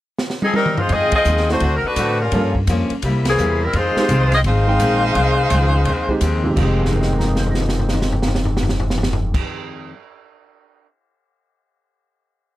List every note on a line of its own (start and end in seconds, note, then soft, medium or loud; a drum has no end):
0.19 snare medium
0.30 snare medium
0.42 0.55 F3 medium
0.42 0.55 C4 medium
0.42 0.54 D#4 medium
0.42 0.55 G#4 medium
0.42 high tom medium
0.54 0.77 G3 medium
0.54 0.77 C4 medium
0.54 0.76 D#4 medium
0.54 0.77 A#4 medium
0.54 high tom medium
0.66 mid tom medium
0.78 0.91 G#3 medium
0.78 0.91 D#4 medium
0.78 0.91 F4 medium
0.78 0.91 C5 medium
0.78 floor tom medium
0.89 1.11 F2 medium
0.89 1.14 F2 soft
0.89 1.15 D#3 soft
0.89 1.15 G#3 soft
0.89 1.14 C4 medium
0.89 1.14 F4 medium
0.89 1.14 G#4 medium
0.89 1.14 D#5 medium
0.89 kick soft
0.89 ride medium
0.93 1.16 C4 soft
1.12 1.47 F4 medium
1.12 1.47 G#4 medium
1.12 1.47 D#5 medium
1.12 muted upright bass stroke soft
1.12 kick medium
1.12 ride medium
1.16 1.47 C4 medium
1.24 1.60 D#2 medium
1.24 1.50 F2 medium
1.24 1.50 D#3 medium
1.24 1.51 G#3 medium
1.24 1.51 C4 medium
1.24 hi-hat pedal medium
1.37 snare soft
1.49 1.60 A3 medium
1.49 1.76 A3 medium
1.49 1.60 C4 soft
1.49 1.76 D4 medium
1.49 1.61 E4 soft
1.49 1.61 F#4 medium
1.49 1.76 F#4 medium
1.49 1.76 C5 medium
1.49 snare soft
1.60 1.82 D2 medium
1.60 1.85 D3 soft
1.60 1.86 A3 soft
1.60 1.86 C4 soft
1.60 kick soft
1.60 ride medium
1.64 1.87 F#4 soft
1.76 1.84 A#4 medium
1.84 2.21 A3 medium
1.84 2.20 D4 medium
1.84 2.21 F#4 medium
1.84 2.20 B4 medium
1.84 muted upright bass stroke soft
1.96 2.31 A2 medium
1.96 2.21 D3 medium
1.96 2.21 A3 medium
1.96 2.22 C4 medium
1.96 2.22 F#4 medium
1.96 kick soft
1.96 hi-hat pedal medium
1.96 ride medium
2.21 2.54 G3 medium
2.21 2.54 C#4 medium
2.21 2.54 F4 medium
2.21 2.53 A#4 medium
2.32 2.66 G2 medium
2.32 2.56 G2 soft
2.32 2.57 F3 soft
2.32 2.53 A#3 soft
2.32 2.57 A#3 soft
2.32 2.53 C#4 soft
2.32 2.58 C#4 soft
2.32 2.53 F4 soft
2.32 2.53 A4 medium
2.32 kick soft
2.32 ride medium
2.55 kick soft
2.67 2.89 F2 medium
2.67 2.92 G2 medium
2.67 2.92 F3 medium
2.67 2.93 A#3 medium
2.67 2.93 C#4 medium
2.67 kick soft
2.67 hi-hat pedal soft
2.67 ride medium
2.90 muted upright bass stroke soft
2.90 ride soft
3.02 3.37 C2 medium
3.02 3.27 C3 soft
3.02 3.28 G3 soft
3.02 3.28 A#3 soft
3.02 3.29 E4 medium
3.02 kick soft
3.02 ride medium
3.25 3.60 E3 medium
3.25 3.60 A#3 medium
3.25 3.60 C4 medium
3.25 3.60 G#4 medium
3.25 snare medium
3.25 ride medium
3.37 3.72 E2 medium
3.37 3.63 C3 medium
3.37 3.63 G3 medium
3.37 3.63 A#3 medium
3.37 3.64 E4 medium
3.37 hi-hat pedal medium
3.63 3.75 G3 medium
3.63 3.75 C4 medium
3.63 3.75 E4 medium
3.63 3.75 A#4 medium
3.73 3.95 F2 medium
3.73 3.98 F2 soft
3.73 3.98 D#3 soft
3.73 3.99 G#3 soft
3.73 4.33 G#3 medium
3.73 3.99 C4 soft
3.73 4.33 D#4 medium
3.73 4.33 F4 medium
3.73 4.34 C5 medium
3.73 kick soft
3.73 ride medium
3.96 4.09 G#3 medium
3.96 4.09 C4 medium
3.96 4.09 D#4 medium
3.96 4.09 G4 medium
3.96 muted upright bass stroke soft
3.96 snare medium
4.09 4.43 C2 medium
4.09 4.33 F2 medium
4.09 4.34 D#3 medium
4.09 4.34 G#3 medium
4.09 4.34 C4 medium
4.09 kick soft
4.09 hi-hat pedal medium
4.09 ride medium
4.32 4.40 C4 medium
4.32 4.39 F4 medium
4.32 4.39 G#4 medium
4.32 4.40 D#5 medium
4.32 snare soft
4.32 ride soft
4.44 4.79 G#1 medium
4.44 4.69 F2 soft
4.44 4.69 D#3 soft
4.44 4.70 G#3 soft
4.44 4.70 C4 soft
4.44 6.19 D#4 medium
4.44 6.19 G#4 medium
4.44 6.19 C5 medium
4.44 6.19 F5 medium
4.44 kick soft
4.44 ride medium
4.67 5.13 G#3 medium
4.67 5.13 C4 medium
4.67 5.14 D#4 medium
4.67 5.14 G5 medium
4.80 5.14 A#1 medium
4.80 5.04 F2 medium
4.80 5.05 D#3 medium
4.80 5.05 G#3 medium
4.80 5.05 C4 medium
4.80 kick soft
4.80 hi-hat pedal medium
4.80 ride medium
5.15 5.50 C2 medium
5.15 5.40 F2 soft
5.15 5.40 D#3 soft
5.15 5.41 G#3 medium
5.15 5.41 C4 medium
5.15 kick soft
5.15 ride medium
5.50 5.85 C#2 medium
5.50 5.75 F2 medium
5.50 5.76 D#3 medium
5.50 5.76 G#3 medium
5.50 5.77 C4 medium
5.50 kick soft
5.50 hi-hat pedal medium
5.50 ride medium
5.85 6.21 D#2 medium
5.85 6.11 F2 soft
5.85 6.11 D#3 soft
5.85 6.12 G#3 soft
5.85 kick soft
5.85 ride medium
5.89 6.12 C4 medium
6.09 6.21 G#3 medium
6.09 6.21 C4 soft
6.09 6.21 D#4 medium
6.09 6.21 G4 medium
6.09 kick soft
6.21 6.56 D#2 medium
6.21 6.46 F2 medium
6.21 6.46 D#3 medium
6.21 6.47 G#3 medium
6.21 6.47 C4 medium
6.21 kick soft
6.21 hi-hat pedal medium
6.21 ride medium
6.43 6.49 F2 medium
6.43 6.55 G#3 soft
6.43 6.56 C4 medium
6.43 6.56 D#4 soft
6.43 6.56 G4 medium
6.51 9.37 F2 medium
6.51 9.38 F3 soft
6.56 9.35 F1 medium
6.56 9.92 F2 medium
6.56 9.92 D#3 medium
6.56 9.39 G#3 medium
6.56 9.41 D#4 soft
6.56 kick medium
6.56 crash medium
6.61 9.92 G#3 medium
6.61 9.92 C4 medium
6.61 9.42 G4 medium
6.80 floor tom soft
6.86 snare soft
6.92 9.36 A#4 soft
6.92 floor tom soft
7.01 9.40 D#5 soft
7.01 snare soft
7.09 9.44 G5 soft
7.09 floor tom medium
7.18 9.49 A#5 soft
7.18 snare soft
7.26 9.53 D#6 soft
7.26 floor tom soft
7.36 9.59 G6 soft
7.36 snare medium
7.47 floor tom soft
7.51 9.65 A#6 soft
7.51 snare medium
7.61 floor tom medium
7.69 snare medium
7.79 floor tom medium
7.89 snare medium
7.94 floor tom medium
8.02 snare medium
8.12 floor tom medium
8.22 snare medium
8.28 floor tom medium
8.35 snare medium
8.45 floor tom medium
8.57 snare medium
8.63 floor tom medium
8.69 snare medium
8.80 floor tom medium
8.90 snare medium
8.98 floor tom medium
9.03 snare medium
9.13 floor tom medium
9.34 kick medium
9.34 crash medium